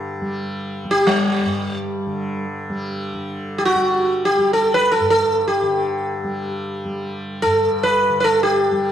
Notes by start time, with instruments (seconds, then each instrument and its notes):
Already playing: tanpura G2 D3 G3
0.21 tanpura G3
0.85 tanpura G3
0.91 sitar G4
1.07 sitar G3
1.45 tanpura G2
2.06 tanpura D3
2.70 tanpura G3
3.14 tanpura D3
3.58 sitar G4
3.65 sitar F#4
3.75 tanpura G3
4.25 sitar G4
4.38 tanpura G3
4.53 sitar A4
4.74 sitar B4
4.92 sitar A4
5.00 tanpura G2
5.10 sitar A4
5.48 sitar G4
5.62 tanpura D3
6.24 tanpura G3
6.85 tanpura G3
7.42 tanpura G2, sitar A4
7.83 sitar B4
8.09 tanpura D3
8.20 sitar A4 B4
8.43 sitar G4
8.72 tanpura G3